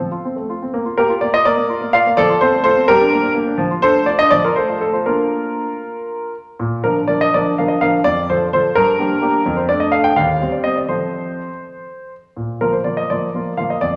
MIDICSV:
0, 0, Header, 1, 2, 480
1, 0, Start_track
1, 0, Key_signature, -2, "major"
1, 0, Tempo, 495050
1, 704, Time_signature, 6, 3, 24, 8
1, 1176, Tempo, 476948
1, 4056, Tempo, 503778
1, 6936, Tempo, 473934
1, 10296, Tempo, 486224
1, 13798, End_track
2, 0, Start_track
2, 0, Title_t, "Grand piano"
2, 0, Program_c, 0, 0
2, 0, Note_on_c, 0, 53, 51
2, 0, Note_on_c, 0, 69, 58
2, 99, Note_off_c, 0, 53, 0
2, 112, Note_on_c, 0, 65, 40
2, 232, Note_off_c, 0, 65, 0
2, 241, Note_on_c, 0, 60, 46
2, 351, Note_on_c, 0, 57, 38
2, 357, Note_off_c, 0, 60, 0
2, 436, Note_off_c, 0, 69, 0
2, 474, Note_off_c, 0, 57, 0
2, 481, Note_on_c, 0, 65, 46
2, 599, Note_off_c, 0, 65, 0
2, 604, Note_on_c, 0, 60, 43
2, 714, Note_off_c, 0, 60, 0
2, 714, Note_on_c, 0, 58, 60
2, 825, Note_off_c, 0, 58, 0
2, 827, Note_on_c, 0, 65, 47
2, 945, Note_on_c, 0, 70, 86
2, 949, Note_off_c, 0, 65, 0
2, 950, Note_on_c, 0, 58, 47
2, 960, Note_on_c, 0, 67, 65
2, 1060, Note_on_c, 0, 65, 52
2, 1069, Note_off_c, 0, 58, 0
2, 1085, Note_off_c, 0, 70, 0
2, 1169, Note_off_c, 0, 67, 0
2, 1174, Note_on_c, 0, 74, 87
2, 1183, Note_off_c, 0, 65, 0
2, 1183, Note_on_c, 0, 58, 50
2, 1295, Note_off_c, 0, 74, 0
2, 1298, Note_on_c, 0, 65, 49
2, 1302, Note_on_c, 0, 75, 98
2, 1306, Note_off_c, 0, 58, 0
2, 1418, Note_on_c, 0, 74, 106
2, 1419, Note_off_c, 0, 75, 0
2, 1421, Note_on_c, 0, 58, 58
2, 1423, Note_off_c, 0, 65, 0
2, 1430, Note_on_c, 0, 70, 70
2, 1525, Note_off_c, 0, 58, 0
2, 1540, Note_on_c, 0, 58, 50
2, 1660, Note_on_c, 0, 65, 51
2, 1665, Note_off_c, 0, 58, 0
2, 1778, Note_on_c, 0, 58, 48
2, 1785, Note_off_c, 0, 65, 0
2, 1872, Note_off_c, 0, 70, 0
2, 1894, Note_off_c, 0, 74, 0
2, 1900, Note_on_c, 0, 77, 107
2, 1905, Note_off_c, 0, 58, 0
2, 1908, Note_on_c, 0, 65, 57
2, 1909, Note_on_c, 0, 74, 79
2, 2030, Note_off_c, 0, 65, 0
2, 2033, Note_on_c, 0, 58, 53
2, 2044, Note_off_c, 0, 77, 0
2, 2125, Note_off_c, 0, 74, 0
2, 2140, Note_on_c, 0, 74, 115
2, 2146, Note_on_c, 0, 53, 71
2, 2147, Note_off_c, 0, 58, 0
2, 2149, Note_on_c, 0, 69, 95
2, 2259, Note_off_c, 0, 53, 0
2, 2263, Note_on_c, 0, 65, 56
2, 2283, Note_off_c, 0, 74, 0
2, 2367, Note_off_c, 0, 69, 0
2, 2379, Note_on_c, 0, 72, 98
2, 2387, Note_off_c, 0, 65, 0
2, 2387, Note_on_c, 0, 60, 63
2, 2394, Note_on_c, 0, 69, 72
2, 2501, Note_on_c, 0, 57, 57
2, 2508, Note_off_c, 0, 60, 0
2, 2594, Note_off_c, 0, 72, 0
2, 2607, Note_off_c, 0, 69, 0
2, 2609, Note_on_c, 0, 72, 108
2, 2616, Note_on_c, 0, 65, 61
2, 2622, Note_on_c, 0, 69, 79
2, 2625, Note_off_c, 0, 57, 0
2, 2742, Note_on_c, 0, 60, 56
2, 2743, Note_off_c, 0, 65, 0
2, 2829, Note_off_c, 0, 72, 0
2, 2843, Note_off_c, 0, 69, 0
2, 2853, Note_on_c, 0, 70, 108
2, 2860, Note_off_c, 0, 60, 0
2, 2864, Note_on_c, 0, 55, 78
2, 2866, Note_on_c, 0, 67, 77
2, 2978, Note_off_c, 0, 55, 0
2, 2985, Note_on_c, 0, 62, 68
2, 3096, Note_on_c, 0, 58, 59
2, 3108, Note_off_c, 0, 62, 0
2, 3214, Note_on_c, 0, 62, 53
2, 3223, Note_off_c, 0, 58, 0
2, 3284, Note_off_c, 0, 70, 0
2, 3322, Note_on_c, 0, 58, 62
2, 3341, Note_off_c, 0, 62, 0
2, 3451, Note_on_c, 0, 62, 53
2, 3454, Note_off_c, 0, 58, 0
2, 3537, Note_off_c, 0, 67, 0
2, 3555, Note_on_c, 0, 53, 78
2, 3571, Note_off_c, 0, 62, 0
2, 3679, Note_off_c, 0, 53, 0
2, 3687, Note_on_c, 0, 65, 58
2, 3803, Note_on_c, 0, 72, 113
2, 3808, Note_on_c, 0, 62, 60
2, 3813, Note_on_c, 0, 69, 85
2, 3816, Note_off_c, 0, 65, 0
2, 3929, Note_on_c, 0, 57, 51
2, 3937, Note_off_c, 0, 62, 0
2, 4040, Note_off_c, 0, 69, 0
2, 4043, Note_on_c, 0, 74, 94
2, 4047, Note_on_c, 0, 65, 54
2, 4052, Note_off_c, 0, 72, 0
2, 4060, Note_off_c, 0, 57, 0
2, 4163, Note_on_c, 0, 75, 105
2, 4164, Note_on_c, 0, 62, 52
2, 4168, Note_off_c, 0, 74, 0
2, 4176, Note_off_c, 0, 65, 0
2, 4276, Note_on_c, 0, 74, 112
2, 4285, Note_on_c, 0, 53, 74
2, 4288, Note_off_c, 0, 75, 0
2, 4289, Note_off_c, 0, 62, 0
2, 4405, Note_off_c, 0, 74, 0
2, 4406, Note_off_c, 0, 53, 0
2, 4408, Note_on_c, 0, 70, 73
2, 4417, Note_on_c, 0, 65, 56
2, 4517, Note_on_c, 0, 72, 85
2, 4525, Note_on_c, 0, 57, 49
2, 4532, Note_off_c, 0, 70, 0
2, 4532, Note_on_c, 0, 69, 67
2, 4542, Note_off_c, 0, 65, 0
2, 4641, Note_on_c, 0, 65, 44
2, 4656, Note_off_c, 0, 57, 0
2, 4743, Note_off_c, 0, 69, 0
2, 4757, Note_on_c, 0, 69, 70
2, 4765, Note_on_c, 0, 57, 45
2, 4767, Note_off_c, 0, 72, 0
2, 4775, Note_off_c, 0, 65, 0
2, 4868, Note_on_c, 0, 72, 61
2, 4876, Note_on_c, 0, 65, 42
2, 4888, Note_off_c, 0, 69, 0
2, 4898, Note_off_c, 0, 57, 0
2, 4993, Note_off_c, 0, 65, 0
2, 4995, Note_on_c, 0, 70, 74
2, 5001, Note_on_c, 0, 58, 51
2, 5002, Note_on_c, 0, 62, 45
2, 5004, Note_off_c, 0, 72, 0
2, 5007, Note_on_c, 0, 65, 57
2, 5517, Note_off_c, 0, 58, 0
2, 5592, Note_off_c, 0, 62, 0
2, 6185, Note_off_c, 0, 65, 0
2, 6216, Note_off_c, 0, 70, 0
2, 6457, Note_on_c, 0, 46, 62
2, 6687, Note_on_c, 0, 70, 77
2, 6690, Note_off_c, 0, 46, 0
2, 6694, Note_on_c, 0, 53, 46
2, 6697, Note_on_c, 0, 62, 48
2, 6832, Note_off_c, 0, 70, 0
2, 6866, Note_off_c, 0, 53, 0
2, 6867, Note_off_c, 0, 62, 0
2, 6915, Note_on_c, 0, 74, 81
2, 6926, Note_on_c, 0, 53, 45
2, 6928, Note_on_c, 0, 62, 41
2, 6933, Note_on_c, 0, 70, 51
2, 7048, Note_off_c, 0, 74, 0
2, 7050, Note_on_c, 0, 75, 93
2, 7106, Note_off_c, 0, 53, 0
2, 7108, Note_off_c, 0, 62, 0
2, 7110, Note_off_c, 0, 70, 0
2, 7177, Note_off_c, 0, 75, 0
2, 7183, Note_on_c, 0, 74, 90
2, 7187, Note_on_c, 0, 53, 50
2, 7189, Note_on_c, 0, 62, 48
2, 7198, Note_on_c, 0, 70, 51
2, 7361, Note_off_c, 0, 53, 0
2, 7362, Note_off_c, 0, 62, 0
2, 7368, Note_off_c, 0, 70, 0
2, 7402, Note_off_c, 0, 74, 0
2, 7428, Note_on_c, 0, 77, 66
2, 7432, Note_on_c, 0, 62, 49
2, 7434, Note_on_c, 0, 53, 49
2, 7442, Note_on_c, 0, 70, 51
2, 7529, Note_on_c, 0, 75, 61
2, 7549, Note_off_c, 0, 77, 0
2, 7605, Note_off_c, 0, 62, 0
2, 7606, Note_off_c, 0, 53, 0
2, 7611, Note_off_c, 0, 70, 0
2, 7659, Note_on_c, 0, 77, 89
2, 7660, Note_off_c, 0, 75, 0
2, 7660, Note_on_c, 0, 53, 48
2, 7664, Note_on_c, 0, 62, 50
2, 7668, Note_on_c, 0, 70, 53
2, 7807, Note_off_c, 0, 77, 0
2, 7837, Note_off_c, 0, 53, 0
2, 7839, Note_off_c, 0, 62, 0
2, 7842, Note_off_c, 0, 70, 0
2, 7894, Note_on_c, 0, 74, 108
2, 7901, Note_on_c, 0, 41, 61
2, 8139, Note_off_c, 0, 41, 0
2, 8143, Note_off_c, 0, 74, 0
2, 8150, Note_on_c, 0, 72, 80
2, 8153, Note_on_c, 0, 53, 50
2, 8158, Note_on_c, 0, 65, 54
2, 8163, Note_on_c, 0, 69, 54
2, 8294, Note_off_c, 0, 72, 0
2, 8325, Note_off_c, 0, 53, 0
2, 8328, Note_off_c, 0, 65, 0
2, 8332, Note_off_c, 0, 69, 0
2, 8389, Note_on_c, 0, 53, 51
2, 8390, Note_on_c, 0, 72, 91
2, 8395, Note_on_c, 0, 65, 51
2, 8400, Note_on_c, 0, 69, 58
2, 8560, Note_off_c, 0, 53, 0
2, 8564, Note_off_c, 0, 65, 0
2, 8567, Note_off_c, 0, 69, 0
2, 8615, Note_on_c, 0, 70, 99
2, 8624, Note_on_c, 0, 43, 70
2, 8627, Note_off_c, 0, 72, 0
2, 8852, Note_off_c, 0, 43, 0
2, 8854, Note_on_c, 0, 58, 48
2, 8855, Note_on_c, 0, 62, 50
2, 8864, Note_on_c, 0, 67, 56
2, 9025, Note_off_c, 0, 58, 0
2, 9026, Note_off_c, 0, 62, 0
2, 9031, Note_off_c, 0, 67, 0
2, 9083, Note_on_c, 0, 58, 49
2, 9086, Note_on_c, 0, 62, 50
2, 9092, Note_on_c, 0, 67, 51
2, 9258, Note_off_c, 0, 58, 0
2, 9260, Note_off_c, 0, 62, 0
2, 9263, Note_off_c, 0, 67, 0
2, 9327, Note_on_c, 0, 41, 69
2, 9434, Note_on_c, 0, 72, 60
2, 9444, Note_off_c, 0, 70, 0
2, 9559, Note_on_c, 0, 74, 92
2, 9560, Note_off_c, 0, 41, 0
2, 9560, Note_on_c, 0, 57, 48
2, 9561, Note_off_c, 0, 72, 0
2, 9570, Note_on_c, 0, 62, 47
2, 9570, Note_on_c, 0, 69, 48
2, 9674, Note_on_c, 0, 75, 70
2, 9683, Note_off_c, 0, 74, 0
2, 9736, Note_off_c, 0, 57, 0
2, 9742, Note_off_c, 0, 62, 0
2, 9742, Note_off_c, 0, 69, 0
2, 9792, Note_on_c, 0, 77, 90
2, 9801, Note_off_c, 0, 75, 0
2, 9801, Note_on_c, 0, 57, 43
2, 9802, Note_on_c, 0, 62, 46
2, 9805, Note_on_c, 0, 69, 51
2, 9916, Note_on_c, 0, 79, 91
2, 9921, Note_off_c, 0, 77, 0
2, 9978, Note_off_c, 0, 57, 0
2, 9979, Note_off_c, 0, 62, 0
2, 9981, Note_off_c, 0, 69, 0
2, 10041, Note_on_c, 0, 39, 65
2, 10041, Note_on_c, 0, 77, 91
2, 10044, Note_off_c, 0, 79, 0
2, 10283, Note_off_c, 0, 39, 0
2, 10292, Note_on_c, 0, 55, 43
2, 10295, Note_on_c, 0, 60, 40
2, 10298, Note_on_c, 0, 72, 49
2, 10374, Note_off_c, 0, 77, 0
2, 10400, Note_on_c, 0, 74, 61
2, 10466, Note_off_c, 0, 55, 0
2, 10467, Note_off_c, 0, 60, 0
2, 10469, Note_off_c, 0, 72, 0
2, 10516, Note_on_c, 0, 75, 75
2, 10520, Note_on_c, 0, 55, 38
2, 10525, Note_on_c, 0, 60, 39
2, 10527, Note_off_c, 0, 74, 0
2, 10527, Note_on_c, 0, 72, 47
2, 10635, Note_on_c, 0, 74, 58
2, 10645, Note_off_c, 0, 75, 0
2, 10698, Note_off_c, 0, 55, 0
2, 10701, Note_off_c, 0, 60, 0
2, 10703, Note_off_c, 0, 72, 0
2, 10761, Note_on_c, 0, 60, 41
2, 10761, Note_on_c, 0, 72, 69
2, 10765, Note_off_c, 0, 74, 0
2, 10765, Note_on_c, 0, 53, 50
2, 10765, Note_on_c, 0, 69, 39
2, 11272, Note_off_c, 0, 53, 0
2, 11343, Note_off_c, 0, 60, 0
2, 11345, Note_off_c, 0, 69, 0
2, 11968, Note_off_c, 0, 72, 0
2, 12221, Note_on_c, 0, 46, 45
2, 12453, Note_off_c, 0, 46, 0
2, 12463, Note_on_c, 0, 70, 69
2, 12468, Note_on_c, 0, 53, 42
2, 12469, Note_on_c, 0, 58, 39
2, 12471, Note_on_c, 0, 65, 42
2, 12576, Note_on_c, 0, 72, 52
2, 12582, Note_off_c, 0, 70, 0
2, 12639, Note_off_c, 0, 53, 0
2, 12640, Note_off_c, 0, 58, 0
2, 12641, Note_off_c, 0, 65, 0
2, 12693, Note_on_c, 0, 74, 70
2, 12697, Note_on_c, 0, 53, 39
2, 12699, Note_off_c, 0, 72, 0
2, 12702, Note_on_c, 0, 58, 35
2, 12707, Note_on_c, 0, 65, 38
2, 12818, Note_off_c, 0, 74, 0
2, 12819, Note_on_c, 0, 75, 70
2, 12873, Note_off_c, 0, 53, 0
2, 12876, Note_off_c, 0, 58, 0
2, 12879, Note_off_c, 0, 65, 0
2, 12941, Note_off_c, 0, 75, 0
2, 12946, Note_on_c, 0, 74, 74
2, 12953, Note_on_c, 0, 53, 40
2, 12955, Note_on_c, 0, 58, 40
2, 12959, Note_on_c, 0, 65, 42
2, 13123, Note_off_c, 0, 53, 0
2, 13124, Note_off_c, 0, 58, 0
2, 13126, Note_off_c, 0, 65, 0
2, 13187, Note_on_c, 0, 53, 37
2, 13191, Note_on_c, 0, 58, 38
2, 13195, Note_on_c, 0, 65, 43
2, 13357, Note_off_c, 0, 53, 0
2, 13360, Note_off_c, 0, 58, 0
2, 13362, Note_off_c, 0, 65, 0
2, 13384, Note_off_c, 0, 74, 0
2, 13415, Note_on_c, 0, 77, 73
2, 13417, Note_on_c, 0, 53, 39
2, 13424, Note_on_c, 0, 58, 39
2, 13426, Note_on_c, 0, 65, 41
2, 13537, Note_off_c, 0, 77, 0
2, 13540, Note_on_c, 0, 75, 57
2, 13590, Note_off_c, 0, 53, 0
2, 13594, Note_off_c, 0, 58, 0
2, 13595, Note_off_c, 0, 65, 0
2, 13650, Note_on_c, 0, 74, 89
2, 13656, Note_on_c, 0, 41, 51
2, 13659, Note_off_c, 0, 75, 0
2, 13798, Note_off_c, 0, 41, 0
2, 13798, Note_off_c, 0, 74, 0
2, 13798, End_track
0, 0, End_of_file